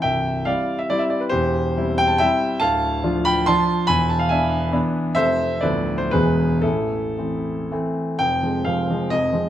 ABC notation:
X:1
M:3/4
L:1/16
Q:1/4=137
K:Am
V:1 name="Grand piano"
[eg]4 [df]3 e d e d B | [Gc]6 g a [eg]4 | [fa]6 [gb]2 [ac']4 | [^gb]2 a f [eg]4 z4 |
[ce]4 [Bd]3 c [^GB]4 | [EA]8 z4 | [K:Fm] g4 f4 e4 |]
V:2 name="Grand piano" clef=bass
[C,,,C,,]4 [G,CE]4 [G,CE]4 | [E,,,E,,]4 [G,CE]4 [G,CE]4 | [D,,,D,,]4 [F,DF]4 [F,DF]4 | [E,,,E,,]4 [E,B,D]4 [E,B,D]4 |
[F,,,F,,C,A,C]4 [D,,,D,,F,A,B,]4 [E,,,E,,E,^G,B,]4 | [A,,,A,,]4 [E,A,C]4 [E,A,C]4 | [K:Fm] [F,,,F,,]2 [F,A,C]2 [F,,,F,,]2 [F,A,C]2 [F,,,F,,]2 [F,A,C]2 |]